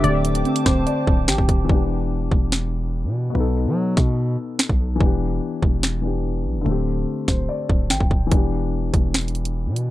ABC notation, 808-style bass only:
X:1
M:4/4
L:1/16
Q:1/4=145
K:Em
V:1 name="808-style bass" clef=bass
D,,,4 z2 D,,,2 z2 D,,,2 A,,, D,,, D,,,2 | E,,,6 E,,,6- E,,, B,,3 | B,,,3 F,3 B,,4 z3 B,,,3 | E,,,4 z2 E,,,8 B,,, E,,, |
D,,,4 z2 D,,,2 z2 D,,,2 A,,, D,,, D,,,2 | E,,,6 E,,,6- E,,, B,,3 |]